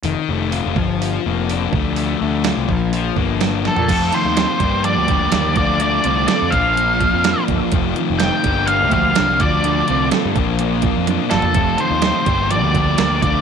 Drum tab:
CC |----------------|----------------|x---------------|----------------|
HH |o---o---o---o---|o---o---o---o---|x-x-x-x-x-x-x-x-|x-x-x-x-x-x-x-x-|
SD |----------------|----o-------o-o-|----o-------o---|----o-------o---|
T1 |----------------|----------------|----------------|----------------|
FT |----------------|---------------o|----------------|----------------|
BD |------o-------o-|------o---o-----|o-----o---o---o-|------o---o---o-|

CC |----------------|----------------|----------------|
HH |x-x-x-x-x-x-x-x-|x-x-x-x-x-x-x-x-|x-x-x-x-x-x-x-x-|
SD |----o-------o---|----o---------o-|----o-------o---|
T1 |----------------|------------o---|----------------|
FT |----------------|---------------o|----------------|
BD |o-----o---o---o-|------o---o-----|o-----o---o---o-|